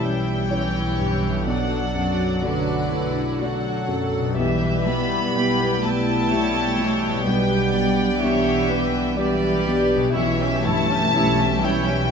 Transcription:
Already playing: felt piano B1 G2 C#4 E4 C#5, double bass section B1, harp B2 C#4 E4 C#5, french horn section E3 C#4, viola section G3 E4, violin section E4 E5
0.02 cello section G3, felt piano C#4, violin section G5
0.50 viola section E3 E4, felt piano C#4 E4 C#5, violin section G4 C#5
0.98 felt piano G2, viola section E3
1.29 harp B2
1.33 harp A3
1.38 harp F#4
1.42 felt piano B1, harp D5
1.47 french horn section F#3 D4, viola section F#3 D4, cello section F#3, violin section A4 D5 F#5
1.94 felt piano F#2, violin section D5
2.42 cello section D3, felt piano A3 F#4 D5, viola section D4, violin section B4 D5 F#5
2.91 felt piano A3, viola section E4
3.40 viola section F#3 F#4, felt piano A3 F#4 D5, violin section A4 F#5
3.88 felt piano F#2, viola section A4
4.20 harp B2
4.25 harp B3
4.29 harp G4
4.34 felt piano B1, french horn section G3 E4, viola section G3 G4, harp E5, violin section E5
4.38 double bass section B1, cello section E3, violin section B4 E5
4.87 felt piano B2, cello section B3, violin section B5
5.35 felt piano B3 G4 E5, viola section G4, violin section B4 G5
5.82 cello section A3, felt piano B3, viola section E4, violin section A5
6.30 viola section G3, felt piano B3 G4 E5, violin section C#5
6.78 felt piano B2, viola section E3
7.08 harp B2
7.13 harp B3
7.17 harp G4
7.21 harp D4
7.26 felt piano B1, cello section G3, viola section B3 G4, french horn section D4, violin section B4 G5
7.74 felt piano B2, violin section D5
8.21 cello section E3, felt piano B3 D4 G4, viola section G4, violin section C#5 E5
8.69 felt piano B3, violin section B4
9.16 viola section G3 G4, felt piano B3 G4 D5, violin section B4 D5
9.64 felt piano B2
9.96 harp B2
10.01 harp C#4
10.05 harp G4
10.10 double bass section B1, french horn section E3 C#4, viola section E4, harp E5
10.14 felt piano B1, cello section E3, violin section E4 C#5 E5
10.40 viola section C#4, violin section G4 E5
10.64 felt piano G2, cello section A3, viola section E4, violin section E4 C#5 A5
10.89 viola section C#4, violin section G4 E5
11.14 double bass section B1, felt piano C#4 G4 E5, viola section E4, violin section E4 C#5
11.38 viola section C#4, violin section G4 E5
11.62 cello section G3, felt piano C#4, viola section E4, violin section E4 C#5 G5
11.86 viola section C#4, violin section G4 E5

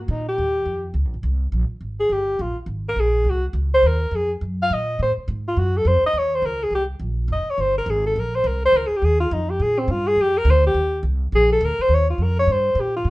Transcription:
0.00 alto saxophone A#3
0.08 upright bass A#2, alto saxophone D#4
0.28 alto saxophone G4
0.38 upright bass D#2
0.66 upright bass F2
0.94 upright bass C#2
1.05 upright bass A#1
1.14 upright bass G1
1.23 upright bass C2
1.52 upright bass A#1
1.70 muted upright bass stroke
1.81 upright bass G#1
2.00 alto saxophone G#4
2.09 upright bass G1, alto saxophone G4
2.39 upright bass A#1, alto saxophone F4
2.56 muted upright bass stroke
2.66 upright bass G#1
2.89 alto saxophone A#4
2.96 upright bass A#1, alto saxophone G#4
3.24 upright bass C2
3.30 alto saxophone F#4
3.53 upright bass C#2
3.74 alto saxophone C5
3.83 upright bass D#2
3.87 alto saxophone A#4
4.11 upright bass F2
4.15 alto saxophone G#4
4.41 upright bass F#2
4.62 alto saxophone F5
4.70 upright bass A#2, alto saxophone D#5
4.99 upright bass A2, alto saxophone C5
5.17 muted upright bass stroke
5.28 upright bass G#2
5.48 alto saxophone F4
5.57 upright bass F#2, alto saxophone F#4
5.77 alto saxophone A4
5.85 upright bass F2, alto saxophone C5
6.02 alto saxophone D#5, muted upright bass stroke
6.13 upright bass D#2
6.18 alto saxophone C#5
6.35 alto saxophone C5
6.42 upright bass C#2, alto saxophone A#4
6.63 alto saxophone G#4
6.71 upright bass C2
6.75 alto saxophone G4
7.00 upright bass A#1
7.28 upright bass F1
7.32 alto saxophone D#5
7.46 muted upright bass stroke
7.50 alto saxophone C#5
7.58 upright bass G1, alto saxophone C5
7.78 alto saxophone A#4
7.86 upright bass G#1
7.90 alto saxophone G#4
8.06 alto saxophone A4
8.16 upright bass A#1, alto saxophone A#4
8.35 alto saxophone C5
8.44 upright bass C2, alto saxophone A#4
8.66 alto saxophone C5
8.72 upright bass C#2
8.77 alto saxophone A#4
8.87 alto saxophone G#4, muted upright bass stroke
8.97 alto saxophone G4
9.02 upright bass D#2, alto saxophone G#4
9.20 alto saxophone F4
9.31 upright bass F2, alto saxophone D#4
9.50 alto saxophone G4
9.60 upright bass A#2, alto saxophone G#4
9.78 alto saxophone C4
9.88 upright bass G2, alto saxophone F4
10.07 alto saxophone G#4
10.16 upright bass F2
10.21 alto saxophone G4
10.38 alto saxophone A#4
10.45 upright bass D2
10.51 alto saxophone C5
10.66 alto saxophone G4
10.74 upright bass D#2
11.03 upright bass C2
11.32 upright bass A#1, alto saxophone G#4
11.52 alto saxophone A4
11.61 upright bass D2, alto saxophone A#4
11.79 alto saxophone C5, muted upright bass stroke
11.89 upright bass D#2
11.94 alto saxophone C#5
12.10 alto saxophone F4
12.18 upright bass F2
12.23 alto saxophone A#4
12.39 alto saxophone C#5
12.47 upright bass G2
12.52 alto saxophone C5
12.75 upright bass A#2
12.80 alto saxophone G4
12.96 alto saxophone F4
13.05 upright bass G#2

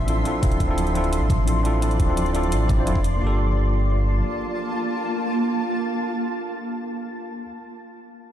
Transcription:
Already playing: sub bass A1, ambient pad F3 E5 C6
0.06 tine electric piano C4 D4 E4 F4 A4, closed hi-hat
0.24 tine electric piano C4 D4 E4 F4 A4, closed hi-hat
0.41 sub bass D1, tine electric piano C4 D4 E4 F4 A4, ambient pad D5, kick, closed hi-hat
0.52 closed hi-hat
0.60 kick, closed hi-hat
0.67 tine electric piano C4 D4 E4 F4 A4
0.78 closed hi-hat
0.87 closed hi-hat
0.93 tine electric piano C4 D4 E4 F4 A4, closed hi-hat
1.04 closed hi-hat
1.13 closed hi-hat
1.21 sub bass A1
1.30 kick, closed hi-hat
1.45 tine electric piano C4 D4 E4 F4 A4, closed hi-hat
1.63 tine electric piano C4 D4 E4 F4 A4, closed hi-hat
1.80 tine electric piano C4 D4 E4 F4 A4, closed hi-hat
1.91 closed hi-hat
1.99 sub bass D1, kick, closed hi-hat
2.06 tine electric piano C4 D4 E4 F4 A4
2.17 closed hi-hat
2.26 closed hi-hat
2.33 tine electric piano C4 D4 E4 F4 A4, closed hi-hat
2.43 closed hi-hat
2.52 sub bass A1, closed hi-hat
2.68 tine electric piano C4 D4 E4 F4 A4, kick, closed hi-hat
2.76 tine electric piano C4 D4 E4 F4 C5
2.85 sub bass F1, tine electric piano C4 D4 E4 F4 A4, closed hi-hat
2.95 kick
3.04 closed hi-hat
3.16 tine electric piano A#3 D4
3.22 sub bass G1, ambient pad A#3 F4 A5, tine electric piano F4 G4
3.27 tine electric piano A4

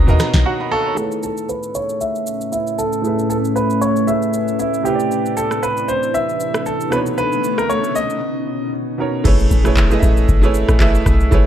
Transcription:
Already playing: grand piano B2 B3 D#4 A#4 C#5 D#5, ambient pad D#4 A#4
0.07 log drum bass D#2, grand piano B2 B3 D#4 A#4 D#5, shaker
0.19 grand piano A#5, cross-stick, snare, shaker
0.34 log drum bass B1, snare, shaker
0.46 grand piano F#4 C#5 F#5 A#5
0.60 grand piano D#5 B5
0.72 grand piano A4 F5 C#6
0.86 grand piano C#5 A#5
0.95 ambient pad A2 A3 C#4 B4, grand piano A3 E4 G#4, shaker
1.00 grand piano B4 C#5
1.12 shaker
1.23 grand piano A4, shaker
1.37 shaker
1.49 grand piano B4, shaker
1.63 shaker
1.75 grand piano C#5, shaker
1.89 shaker
2.01 grand piano E5, shaker
2.15 shaker
2.27 shaker
2.41 shaker
2.52 grand piano E4, shaker
2.67 shaker
2.78 grand piano A4, shaker
2.93 shaker
3.02 grand piano A3 E4 G#4, shaker
3.06 grand piano B4 E5
3.19 shaker
3.30 grand piano A4, shaker
3.45 shaker
3.56 grand piano B4, shaker
3.70 shaker
3.81 grand piano C#5, shaker
3.96 shaker
4.07 grand piano A3 E4 G#4 B4 C#5 E5, shaker
4.22 shaker
4.33 shaker
4.48 shaker
4.59 grand piano E4, shaker
4.74 shaker
4.83 grand piano C3 C4 E4 G4, ambient pad C3 D4 E4, shaker
4.87 grand piano B4 C5
4.95 grand piano D5
5.00 shaker
5.11 swell, shaker
5.26 shaker
5.37 grand piano A4, shaker
5.51 cross-stick, shaker
5.63 grand piano B4, shaker
5.77 shaker
5.88 grand piano C5, shaker
6.03 shaker
6.14 grand piano E5, shaker
6.29 shaker
6.40 shaker
6.54 cross-stick, shaker
6.66 grand piano A4, shaker
6.81 shaker
6.90 grand piano B2 B3 D4 B4, ambient pad B2 B3 C#4 D#4, cross-stick, shaker
6.94 grand piano B4 C#5
6.99 grand piano D#4
7.06 shaker
7.18 grand piano B4, shaker
7.32 shaker
7.44 shaker
7.58 grand piano A#4, cross-stick, shaker
7.69 grand piano C#5, shaker
7.84 shaker
7.95 grand piano D#5, shaker
8.10 shaker
8.98 grand piano B2 B3 D#4 A#4 C#5
9.24 log drum bass A1, grand piano A3 E4 G#4 B4 C#5, kick, crash, impact, shaker
9.40 shaker
9.51 log drum bass A1, shaker
9.64 grand piano A3 E4 G#4 B4 C#5, cross-stick, shaker
9.77 kick, clap, shaker
9.90 grand piano A3 E4 G#4 B4 D#5, shaker
9.99 log drum bass A1, grand piano E5, shaker
10.17 shaker
10.29 log drum bass G#1, kick, shaker
10.42 grand piano A3 E4 G#4 B4 C#5, shaker
10.54 shaker
10.69 log drum bass A1, cross-stick, shaker
10.79 grand piano A3 E4 G#4 B4 E5, kick, clap, shaker
10.95 shaker
11.06 log drum bass B1, kick, cross-stick, shaker
11.20 shaker
11.31 log drum bass A1, grand piano A3 E4 G#4 B4 C#5, kick, shaker

